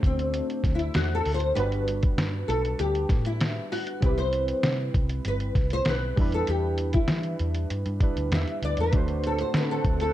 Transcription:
Already playing: A3 D4 F#4 C5
0.03 D2 C4, kick, closed hi-hat
0.19 closed hi-hat
0.34 closed hi-hat
0.50 closed hi-hat
0.63 D2, kick, snare, closed hi-hat
0.75 E4
0.79 closed hi-hat
0.94 E2 F#4, snare, closed hi-hat
1.15 A4
1.25 D2, open hi-hat
1.34 C5
1.40 closed hi-hat
1.55 G1 G3 D4 F#4 B4, closed hi-hat
1.60 B4
1.72 closed hi-hat
1.88 closed hi-hat
2.03 kick, closed hi-hat
2.18 G2, snare, closed hi-hat
2.48 B1 A4, closed hi-hat
2.65 closed hi-hat
2.79 D2 G4, closed hi-hat
2.95 closed hi-hat
3.09 A2, kick, snare, closed hi-hat
3.25 E4, closed hi-hat
3.41 snare, closed hi-hat
3.72 F#4, open hi-hat
3.87 closed hi-hat
4.01 C2 G3 C4 E4 G4, kick, closed hi-hat
4.06 B4
4.18 C5, closed hi-hat
4.33 closed hi-hat
4.48 closed hi-hat
4.63 C3, snare, closed hi-hat
4.94 C2, kick, closed hi-hat
5.09 closed hi-hat
5.25 G1 B4, closed hi-hat
5.40 closed hi-hat
5.55 C2, kick, snare, closed hi-hat
5.70 C5, closed hi-hat
5.85 B1 B4, snare, closed hi-hat
6.16 E2 G3 D4 E4, kick, open hi-hat
6.21 B4
6.32 A4, closed hi-hat
6.47 E2 G4, closed hi-hat
6.78 closed hi-hat
6.93 E4, kick, closed hi-hat
7.08 E3, snare, closed hi-hat
7.23 closed hi-hat
7.39 E2, closed hi-hat
7.55 closed hi-hat
7.70 G2, closed hi-hat
7.86 G2, closed hi-hat
8.00 G3 D4 E4 B4, kick, closed hi-hat
8.17 D2, closed hi-hat
8.31 E2 E5, snare, closed hi-hat
8.47 closed hi-hat
8.62 D2 D5, closed hi-hat
8.77 E2 B4, closed hi-hat
8.92 D2 D3 A3 C4 D4 F#4 F#5, kick, closed hi-hat
8.97 C5
9.08 closed hi-hat
9.24 A4, closed hi-hat
9.39 C5, closed hi-hat
9.54 D3 B4, snare, closed hi-hat
9.71 A4
9.84 D2, kick, closed hi-hat
10.00 A4, closed hi-hat

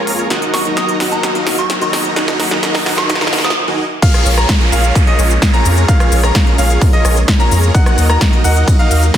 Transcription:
Already playing: G#3 A#3 C#4 F4 G#4 A#4 C#5 A#5, riser
0.07 F2, open hi-hat
0.19 closed hi-hat
0.30 F#3 D#4 F#4 A#4 D#5 F#5, snare, closed hi-hat
0.42 closed hi-hat
0.54 D#2 C#6, snare, open hi-hat
0.65 D#4 F#4 A#4 D#5 A#5, closed hi-hat
0.77 D#6, snare, closed hi-hat
0.89 closed hi-hat
1.00 D#2 D#4 F#4 A#4 D#5 F#5, snare, open hi-hat
1.12 A#5, closed hi-hat
1.23 snare, closed hi-hat
1.35 D#4 F#4 A#4 D#5 F5, closed hi-hat
1.47 D#2, snare, open hi-hat
1.58 C#6, closed hi-hat
1.70 snare, closed hi-hat
1.81 D#4 F#4 A#4 D#5 A#5 C#6, closed hi-hat
1.93 A#1, snare, open hi-hat
2.05 closed hi-hat
2.16 D#4 F#4 A#4 D#5 F#5, snare, closed hi-hat
2.28 snare, closed hi-hat
2.40 D#2, snare, open hi-hat
2.51 D#4 F#4 A#4 D#5 A#5, snare
2.63 snare, closed hi-hat
2.75 snare, open hi-hat
2.86 D#2 D#4 F#4 A#4 D#5 F#5, snare, open hi-hat
2.98 C#6, snare, closed hi-hat
3.10 snare, closed hi-hat
3.15 snare
3.21 D#4 F#4 A#4 D#5 F5, snare, closed hi-hat
3.27 snare
3.33 D#2, snare, open hi-hat
3.39 snare
3.44 D#6, snare, closed hi-hat
3.50 snare
3.68 D#4 F#4 A#4 D#5 G#5
4.02 G#3 A#3 C#4 F4 G#4 A#4 C#5 F5, kick, closed hi-hat, crash, ride, downlifter, cabasa
4.14 cross-stick, closed hi-hat, cabasa
4.26 A#1, open hi-hat, cabasa
4.37 F4 G#4 A#4 C#5 A#5, cross-stick, closed hi-hat, cabasa
4.49 kick, snare, closed hi-hat, ride, cabasa
4.61 closed hi-hat
4.72 A#1 F4 G#4 A#4 C#5 F5, open hi-hat, cabasa
4.84 closed hi-hat, cabasa
4.95 kick, closed hi-hat, ride, cabasa
5.07 F4 G#4 A#4 C#5 D#5, closed hi-hat
5.19 A#1, open hi-hat, cabasa
5.30 closed hi-hat, cabasa
5.42 kick, snare, closed hi-hat, ride, cabasa
5.54 F4 G#4 A#4 C#5 A#5, closed hi-hat, cabasa
5.65 F2, open hi-hat, cabasa
5.77 closed hi-hat, cabasa
5.88 F4 F5, kick, closed hi-hat, ride, cabasa
6.00 cross-stick, closed hi-hat, cabasa
6.12 A#1, open hi-hat, cabasa
6.23 F4 G#4 A#4 C#5 A#5, cross-stick, closed hi-hat, cabasa
6.35 kick, snare, closed hi-hat, ride, cabasa
6.47 closed hi-hat
6.58 A#1 F4 G#4 A#4 C#5 F5, open hi-hat, cabasa
6.70 closed hi-hat, cabasa
6.81 kick, open hi-hat, ride, cabasa
6.93 F4 G#4 A#4 C#5 D#5, closed hi-hat
7.05 A#1, cross-stick, open hi-hat, cabasa
7.16 closed hi-hat, cabasa
7.28 kick, snare, closed hi-hat, ride, cabasa
7.40 F4 G#4 A#4 C#5 A#5, closed hi-hat, cabasa
7.51 F2, open hi-hat, cabasa
7.63 closed hi-hat, cabasa
7.74 F#3 D#4 F#4 A#4 F#5, kick, closed hi-hat, ride, cabasa
7.86 cross-stick, closed hi-hat, cabasa
7.98 D#2, open hi-hat, cabasa
8.09 D#4 F#4 A#4 D#5 A#5, cross-stick, closed hi-hat, cabasa
8.21 kick, snare, closed hi-hat, ride, cabasa
8.33 closed hi-hat
8.44 D#2 D#4 F#4 A#4 D#5 F#5, open hi-hat, cabasa
8.56 closed hi-hat, cabasa
8.68 kick, closed hi-hat, ride, cabasa
8.79 D#4 F#4 A#4 D#5 F5, closed hi-hat
8.91 D#2, open hi-hat, cabasa
9.03 closed hi-hat, cabasa
9.14 kick, snare, closed hi-hat, ride

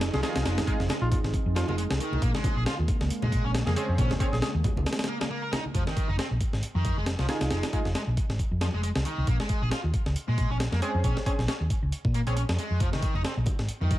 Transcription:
Already playing: F3 C4 D#4 G#4
0.01 snare, closed hi-hat
0.13 C2 F3 G#4, snare, muted conga, high conga
0.23 D#3 D#4 F4 G#4, snare, closed hi-hat
0.35 C2, snare, closed hi-hat
0.45 F1 G#3, snare, closed hi-hat
0.58 snare, closed hi-hat, muted conga, low conga
0.67 G#3 D#4 F4 G#4, kick, closed hi-hat
0.79 F1, snare
0.89 G#3, snare, closed hi-hat, muted conga
1.01 A#1 F4
1.11 F4, kick, closed hi-hat, low conga
1.24 G#1, snare
1.33 kick, closed hi-hat, muted conga
1.46 F2
1.56 F3 F4, snare, closed hi-hat
1.68 F1 G#3 F4, muted conga
1.78 G#3, closed hi-hat
1.90 C2, snare
2.00 D#3, closed hi-hat
2.12 C2, muted conga, high conga
2.22 A#1 C#3 G#3 A#3, kick, closed hi-hat
2.35 G#3, snare, high conga
2.44 kick, closed hi-hat, muted conga
2.56 A#1 G#4
2.66 F4, snare, closed hi-hat
2.79 D#2
2.88 kick, closed hi-hat, muted conga
3.01 C#2, snare
3.10 muted fingered electric bass stroke, closed hi-hat
3.22 A#2 G#3, muted conga, low conga
3.32 kick, closed hi-hat
3.44 A#1 C#4
3.55 snare, closed hi-hat
3.66 F2 A#3 G#4, snare, muted conga, high conga
3.76 G#3 C4 C#4 G#4, closed hi-hat
3.88 F2
3.98 A#1 C#4, kick, closed hi-hat, muted conga
4.10 snare, high conga, low conga
4.20 C4 C#4 G#4, kick, closed hi-hat
4.32 A#1 G#4, snare
4.42 C#4 G#4, snare, closed hi-hat, muted conga
4.54 D#2
4.64 kick, closed hi-hat, low conga
4.76 C#2, muted conga
4.86 snare, closed hi-hat
4.93 snare, closed hi-hat
4.99 snare, closed hi-hat
5.04 snare, closed hi-hat
5.08 A#3
5.21 A#3, snare, muted conga
5.30 A#3
5.43 A#4
5.52 D#4, snare, closed hi-hat, muted conga
5.65 high conga
5.75 F1 F3, kick, closed hi-hat
5.87 D#3, snare
5.97 kick, closed hi-hat
6.09 F1 D#4
6.18 C4, snare, closed hi-hat
6.31 A#1
6.41 kick, closed hi-hat
6.53 G#1, snare
6.63 muted fingered electric bass stroke, closed hi-hat
6.75 F2 D#3
6.85 kick, closed hi-hat
6.97 F1 G#3
7.06 snare, closed hi-hat
7.19 C2 F3, snare
7.29 D#3 D#4 F4 G#4, snare, closed hi-hat
7.41 C2, snare, closed hi-hat
7.51 F1 G#3, snare, closed hi-hat
7.63 snare, closed hi-hat
7.73 G#3 D#4 F4 G#4, kick, closed hi-hat
7.85 F1, snare
7.95 G#3, snare, closed hi-hat
8.07 A#1
8.17 kick, closed hi-hat
8.29 G#1, snare
8.39 kick, closed hi-hat
8.51 F2
8.61 F3, snare, closed hi-hat
8.73 F1 G#3
8.83 G#3, closed hi-hat
8.95 C2, snare
9.05 D#3, closed hi-hat
9.18 C2
9.27 A#1 A#3, kick, closed hi-hat
9.40 G#3, snare
9.49 kick, closed hi-hat
9.62 A#1 G#4
9.71 F4, snare, closed hi-hat
9.84 D#2
9.94 kick, closed hi-hat
10.06 C#2, snare
10.16 muted fingered electric bass stroke, closed hi-hat
10.28 A#2 G#3
10.38 kick, closed hi-hat
10.50 A#1 C#4
10.60 snare, closed hi-hat
10.72 F2 A#3, snare
10.82 G#3 C4 C#4 G#4, closed hi-hat
10.94 F2
11.04 A#1 C#4, kick, closed hi-hat
11.17 snare
11.26 C4 C#4 G#4, kick, closed hi-hat
11.38 A#1, snare
11.48 C#4, snare, closed hi-hat
11.60 D#2
11.70 kick, closed hi-hat
11.82 C#2
11.92 closed hi-hat
12.05 A#2, kick
12.14 A#3, closed hi-hat
12.27 A#1 C4 C#4 G#4, closed hi-hat
12.37 C#4, closed hi-hat
12.49 F2, snare
12.59 G#3, closed hi-hat
12.70 F2
12.80 F1 F3, kick, closed hi-hat
12.93 D#3, snare, high conga
13.02 kick, closed hi-hat
13.14 F1 D#4, muted conga
13.25 C4, snare, closed hi-hat
13.37 A#1
13.46 kick, closed hi-hat, muted conga
13.59 G#1, snare
13.69 muted fingered electric bass stroke, closed hi-hat
13.81 F2 D#3, low conga
13.91 kick, closed hi-hat, muted conga

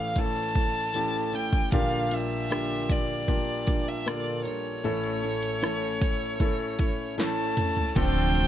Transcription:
Already playing: A1 A2 E3 A3 C#4 E4 G4 A4 F5
0.15 A3 C#4 E4 A4 A5, kick, closed hi-hat
0.55 A3 C#4 E4 A4, kick, closed hi-hat
0.94 A2 E3 A3 C#4 E4 G4 A4, closed hi-hat
1.33 A3 C#4 E4 A4 G5, closed hi-hat
1.53 kick
1.72 A#1 A#2 D3 G3 A#3 D4 F4 G4 A#4 F5, kick, closed hi-hat
1.91 closed hi-hat
2.11 G3 D4 F4 A#4 E5, closed hi-hat
2.50 A#2 D3 G3 A#3 D4 F4 G4 A#4, cross-stick, closed hi-hat
2.90 D5, kick, closed hi-hat
3.28 G3 A#3 D4 F4 G4 A#4, kick, closed hi-hat
3.67 G3 D4 F4 A#4, kick, closed hi-hat
3.88 E5
4.06 A#2 D3 G3 A#3 D4 F4 A4 A#4 D5, cross-stick, closed hi-hat
4.45 G3 D4 F4 A#4 C#5, closed hi-hat
4.84 A1 A2 E3 A3 C#4 E4 A4, closed hi-hat
5.04 closed hi-hat
5.23 A3 C#4 E4 A4, closed hi-hat
5.43 closed hi-hat
5.62 A2 E3 A3 C#4 E4 A4, cross-stick, closed hi-hat
6.02 kick, closed hi-hat
6.40 A3 C#4 E4 A4, kick, closed hi-hat
6.79 A3 C#4 E4 A4, kick, closed hi-hat
7.18 A2 E3 A3 C#4 E4 A4 A5, snare, closed hi-hat
7.57 A3 C#4 E4 A4, closed hi-hat, mid tom
7.77 floor tom
7.95 D1 C3 D3 F3 A3 C4 D4 F4 A4 C5 G5, kick, crash, ride
8.34 C4 F4 A4, ride

